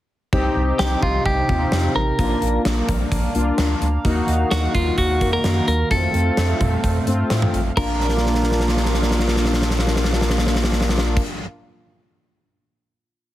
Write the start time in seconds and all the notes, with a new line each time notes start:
0.33 C2 C3 C4 D#4 G4, kick
0.56 C2
0.79 C2 G4, snare
1.03 C2 F4, kick
1.26 C2 G4, kick
1.49 D#2 C4 D#4 F4, kick
1.72 F2, snare
1.96 A1 A#4
2.19 A#1 A#3 D4 F4 F5, kick, closed hi-hat
2.42 A#1, closed hi-hat
2.65 A#1, snare, closed hi-hat
2.89 A#1, kick, closed hi-hat
3.12 A#1, kick, closed hi-hat
3.35 C2 A#3 D4 F4, closed hi-hat
3.58 D2, snare, closed hi-hat
3.82 D2, closed hi-hat
4.05 D#2 D#3 A#3 D#4 F#4, kick, closed hi-hat
4.28 D#2, closed hi-hat
4.51 D#2 F#4, snare, closed hi-hat
4.75 D#2 F4, kick, closed hi-hat
4.98 D#2 F#4, kick, closed hi-hat
5.21 F2 A#3 D#4 F#4, kick, closed hi-hat
5.33 A#4
5.44 F#2, snare, closed hi-hat
5.68 D#2 A#4, closed hi-hat
5.91 F2 A3 C4 F4 A4, kick, closed hi-hat
6.14 F2, closed hi-hat
6.37 F2, snare, closed hi-hat
6.61 F2, kick, closed hi-hat, mid tom
6.84 F2, kick, closed hi-hat
7.07 G2 A3 C4 F4, closed hi-hat
7.30 A2, snare, closed hi-hat
7.42 mid tom
7.54 A1, closed hi-hat
7.77 A#1 A#2 A#3 D4 F4 A#4, kick, crash
8.00 snare
8.09 snare
8.17 snare
8.26 snare
8.34 snare
8.43 snare
8.51 snare
8.60 snare
8.68 snare
8.77 snare
8.85 snare
8.94 snare
9.02 snare
9.11 snare
9.19 snare
9.28 snare
9.36 snare
9.45 snare
9.53 snare
9.62 snare
9.70 snare
9.79 snare
9.87 snare
9.96 snare
10.04 snare
10.13 snare
10.21 snare
10.30 snare
10.38 snare
10.47 snare
10.55 snare
10.64 snare
10.72 snare
10.81 snare
10.89 snare
10.98 snare
11.17 kick, crash